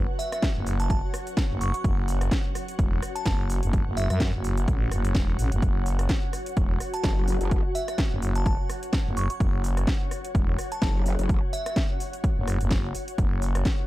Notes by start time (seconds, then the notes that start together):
Already playing: F#3 C#4 F#4 B4 C#5 F#5
0.19 E5, open hi-hat, shaker
0.32 E5, cross-stick, closed hi-hat, shaker
0.42 kick, snare, closed hi-hat, shaker
0.56 F#1
0.66 open hi-hat, shaker
0.80 A5, closed hi-hat, shaker
0.90 A5, kick, closed hi-hat, shaker
1.14 cross-stick, open hi-hat, shaker
1.27 closed hi-hat, shaker
1.37 kick, snare, closed hi-hat, shaker
1.51 F#1
1.61 C#6, open hi-hat, shaker
1.74 C#6, closed hi-hat, shaker
1.84 F#1, kick, closed hi-hat, shaker
2.08 open hi-hat, shaker
2.21 cross-stick, closed hi-hat, shaker
2.31 kick, snare, closed hi-hat, shaker
2.55 cross-stick, open hi-hat, shaker
2.68 closed hi-hat, shaker
2.79 E1, kick, closed hi-hat, shaker
3.02 cross-stick, open hi-hat, shaker
3.15 A5, closed hi-hat, shaker
3.26 F#1 A5, kick, snare, closed hi-hat, shaker
3.50 open hi-hat, shaker
3.63 F#1, closed hi-hat, shaker
3.73 kick, closed hi-hat, shaker
3.87 F#1
3.97 E5, open hi-hat, shaker
4.10 F#2 E5, cross-stick, closed hi-hat, shaker
4.20 kick, snare, closed hi-hat, shaker
4.34 F#1
4.44 open hi-hat, shaker
4.57 closed hi-hat, shaker
4.68 A1, kick, closed hi-hat, shaker
4.91 F#1, cross-stick, open hi-hat, shaker
5.05 closed hi-hat, shaker
5.15 E1, kick, snare, closed hi-hat, shaker
5.39 A1, open hi-hat, shaker
5.52 F#1, closed hi-hat, shaker
5.62 F#1 F#4, kick, closed hi-hat, shaker
5.86 open hi-hat, shaker
5.99 cross-stick, closed hi-hat, shaker
6.09 kick, snare, closed hi-hat, shaker
6.33 cross-stick, open hi-hat, shaker
6.46 closed hi-hat, shaker
6.57 E1, kick, closed hi-hat, shaker
6.80 cross-stick, open hi-hat, shaker
6.94 A5, closed hi-hat, shaker
7.04 F#1 A5, kick, snare, closed hi-hat, shaker
7.28 open hi-hat, shaker
7.41 F#1, closed hi-hat, shaker
7.51 kick, closed hi-hat, shaker
7.75 E5, open hi-hat, shaker
7.88 E5, cross-stick, closed hi-hat, shaker
7.98 kick, snare, closed hi-hat, shaker
8.12 F#1
8.22 open hi-hat, shaker
8.35 A5, closed hi-hat, shaker
8.46 A5, kick, closed hi-hat, shaker
8.70 cross-stick, open hi-hat, shaker
8.83 closed hi-hat, shaker
8.93 kick, snare, closed hi-hat, shaker
9.06 F#1
9.17 C#6, open hi-hat, shaker
9.30 C#6, closed hi-hat, shaker
9.40 F#1, kick, closed hi-hat, shaker
9.64 open hi-hat, shaker
9.77 cross-stick, closed hi-hat, shaker
9.87 kick, snare, closed hi-hat, shaker
10.11 cross-stick, open hi-hat, shaker
10.25 closed hi-hat, shaker
10.35 E1, kick, closed hi-hat, shaker
10.59 cross-stick, open hi-hat, shaker
10.72 A5, closed hi-hat, shaker
10.82 F#1 A5, kick, snare, closed hi-hat, shaker
11.06 open hi-hat, shaker
11.19 F#1, closed hi-hat, shaker
11.29 kick, closed hi-hat, shaker
11.53 E5, open hi-hat, shaker
11.66 E5, cross-stick, closed hi-hat, shaker
11.76 kick, snare, closed hi-hat, shaker
12.00 open hi-hat, shaker
12.13 closed hi-hat, shaker
12.24 kick, closed hi-hat, shaker
12.37 F#1
12.47 cross-stick, open hi-hat, shaker
12.61 F#1, closed hi-hat, shaker
12.71 kick, snare, closed hi-hat, shaker
12.95 open hi-hat, shaker
13.08 closed hi-hat, shaker
13.18 F#1 A4, kick, closed hi-hat, shaker
13.42 open hi-hat, shaker
13.55 cross-stick, closed hi-hat, shaker
13.65 kick, snare, closed hi-hat, shaker